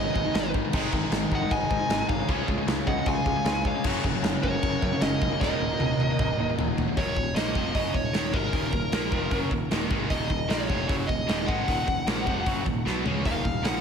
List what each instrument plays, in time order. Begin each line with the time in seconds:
Already playing: distorted electric guitar G#2 D#3, overdriven electric guitar G#2 D#3 G#3 B3 D#4, lead electric guitar B4 D#5
0.15 picked electric bass G#1, distorted electric guitar G#2 D#3, kick
0.25 distorted electric guitar G#2 D#3
0.34 picked electric bass G#1, distorted electric guitar G#2 D#3, snare, china
0.54 distorted electric guitar G#2 D#3, kick
0.65 distorted electric guitar G#2 D#3
0.73 picked electric bass G#1, overdriven electric guitar G#2 D#3 G#3 C4 D#4, distorted electric guitar G#2 D#3 G#3, kick, crash, china
0.92 picked electric bass G#1, distorted electric guitar G#2 D#3, kick
1.03 distorted electric guitar G#2 D#3
1.11 picked electric bass G#1, distorted electric guitar G#2 D#3, snare, china
1.31 picked electric bass G#1, distorted electric guitar G#2 D#3, lead electric guitar D#5 F#5, kick
1.42 distorted electric guitar G#2 D#3
1.51 picked electric bass G#1, distorted electric guitar G#2 D#3, lead electric guitar D#5 G#5, kick, china
1.70 picked electric bass G#2, distorted electric guitar G#2 D#3, kick
1.79 distorted electric guitar G#2 D#3
1.89 picked electric bass G#1, distorted electric guitar G#2 D#3, snare, china
2.09 picked electric bass G#1, distorted electric guitar G#2 D#3, lead electric guitar C#5 F5, kick
2.20 distorted electric guitar G#2 D#3
2.28 picked electric bass C#2, distorted electric guitar C#3 G#3 C#4, overdriven electric guitar C#3 G#3 C#4 F4 G#4, kick, china
2.48 picked electric bass C#2, distorted electric guitar C#3 G#3, kick
2.58 distorted electric guitar C#3 G#3
2.67 picked electric bass C#2, distorted electric guitar C#3 G#3, snare, china
2.87 picked electric bass C#2, distorted electric guitar C#3 G#3, lead electric guitar D#5 F#5, kick
2.97 distorted electric guitar C#3 G#3
3.06 picked electric bass C#2, distorted electric guitar C#3 G#3, lead electric guitar F5 G#5, kick, china
3.26 picked electric bass C#2, distorted electric guitar C#3 G#3, kick
3.36 distorted electric guitar C#3 G#3
3.44 picked electric bass C#2, distorted electric guitar C#3 G#3, snare, china
3.65 distorted electric guitar C#3 G#3, lead electric guitar C#5 F5, kick
3.76 distorted electric guitar C#3 G#3
3.84 picked electric bass F#1, overdriven electric guitar F#2 C#3 F#3 A#3 C#4 F#4, distorted electric guitar F#2 C#3 F#3, kick, china, crash
4.04 picked electric bass F#1, distorted electric guitar F#2 C#3, kick
4.15 distorted electric guitar F#2 C#3
4.22 picked electric bass F#1, distorted electric guitar F#2 C#3, snare, china
4.43 picked electric bass F#1, distorted electric guitar F#2 C#3, lead electric guitar A#4 C#5, kick
4.54 distorted electric guitar F#2 C#3
4.63 picked electric bass F#1, distorted electric guitar F#2 C#3, kick, china
4.82 picked electric bass F#2, distorted electric guitar F#2 C#3, kick
4.93 distorted electric guitar F#2 C#3
5.01 picked electric bass F#1, distorted electric guitar F#2 C#3, lead electric guitar A#4 D#5, snare, china
5.21 picked electric bass F1, distorted electric guitar F#2 C#3, kick
5.33 distorted electric guitar F#2 C#3
5.41 picked electric bass D#1, overdriven electric guitar D#2 A#2 D#3 F#3 A#3 D#4, distorted electric guitar D#2 A#2 D#3, lead electric guitar A#4 D#5, kick, snare
5.60 picked electric bass D#1, distorted electric guitar D#2 A#2
5.72 distorted electric guitar D#2 A#2
5.79 picked electric bass D#1, distorted electric guitar D#2 A#2, high tom
5.98 picked electric bass D#1, distorted electric guitar D#2 A#2, high tom
6.11 distorted electric guitar D#2 A#2
6.19 picked electric bass D#1, distorted electric guitar D#2 A#2, kick, mid tom
6.38 picked electric bass D#1, distorted electric guitar D#2 A#2
6.49 distorted electric guitar D#2 A#2
6.56 picked electric bass D#1, distorted electric guitar D#2 A#2, floor tom
6.78 distorted electric guitar D#2 A#2, floor tom
6.88 distorted electric guitar D#2 A#2
6.96 picked electric bass D#1, distorted electric guitar D#2 A#2 D#3, lead electric guitar C#5, kick, open hi-hat
7.16 picked electric bass D#1, distorted electric guitar D#2 A#2, kick
7.34 picked electric bass A#1, distorted electric guitar A#2 F3 A#3, lead electric guitar D#5, snare, open hi-hat
7.55 picked electric bass F1, distorted electric guitar F2 C3 F3, kick
7.74 picked electric bass F#1, distorted electric guitar F#2 C#3 F#3, lead electric guitar D#5, kick, open hi-hat
7.94 picked electric bass D#1, distorted electric guitar D#2 A#2, lead electric guitar C#5, kick
8.13 picked electric bass D#1, distorted electric guitar D#2 A#2 D#3, snare, open hi-hat
8.32 picked electric bass G#1, distorted electric guitar G#2 D#3 G#3, lead electric guitar A#4, kick
8.53 picked electric bass D#1, distorted electric guitar D#2 A#2 D#3, kick, open hi-hat
8.73 picked electric bass D#1, distorted electric guitar D#2 A#2, kick
8.92 picked electric bass A#1, distorted electric guitar A#2 F3 A#3, snare, open hi-hat
9.12 picked electric bass F1, distorted electric guitar F2 C3 F3, kick
9.31 picked electric bass F#1, distorted electric guitar F#2 C#3 F#3, kick, open hi-hat
9.51 picked electric bass D#1, distorted electric guitar D#2 A#2, kick
9.71 picked electric bass D#1, distorted electric guitar D#2 A#2 D#3, snare, open hi-hat
9.90 picked electric bass G#1, distorted electric guitar G#2 D#3 G#3, kick
10.10 picked electric bass D#1, distorted electric guitar D#2 A#2 D#3, lead electric guitar D#5, kick, open hi-hat
10.30 picked electric bass D#1, distorted electric guitar D#2 A#2, kick
10.49 picked electric bass A#1, distorted electric guitar A#2 F3 A#3, lead electric guitar C#5, snare, open hi-hat
10.69 picked electric bass F1, distorted electric guitar F2 C3 F3, kick
10.88 picked electric bass F#1, distorted electric guitar F#2 C#3 F#3, lead electric guitar C#5, kick, open hi-hat
11.07 picked electric bass D#1, distorted electric guitar D#2 A#2, lead electric guitar D#5, kick
11.27 picked electric bass D#1, distorted electric guitar D#2 A#2 D#3, snare, open hi-hat
11.46 picked electric bass G#1, distorted electric guitar G#2 D#3 G#3, lead electric guitar F#5, kick
11.67 picked electric bass D#1, distorted electric guitar D#2 A#2 D#3, kick, open hi-hat
11.87 picked electric bass D#1, distorted electric guitar D#2 A#2, kick
12.07 picked electric bass A#1, distorted electric guitar A#2 F3 A#3, snare, open hi-hat
12.26 picked electric bass F1, distorted electric guitar F2 C3 F3, kick
12.45 picked electric bass F#1, distorted electric guitar F#2 C#3 F#3, kick, open hi-hat
12.66 picked electric bass D#1, distorted electric guitar D#2 A#2, kick
12.85 picked electric bass B1, distorted electric guitar B2 F#3 B3, snare
13.05 picked electric bass C#2, distorted electric guitar C#3 G#3 C#4, floor tom
13.24 picked electric bass D#1, distorted electric guitar D#2 A#2 D#3, lead electric guitar F5, kick, open hi-hat
13.44 picked electric bass D#1, distorted electric guitar D#2 A#2, kick
13.63 picked electric bass A#1, distorted electric guitar A#2 F3 A#3, lead electric guitar F#5, snare, open hi-hat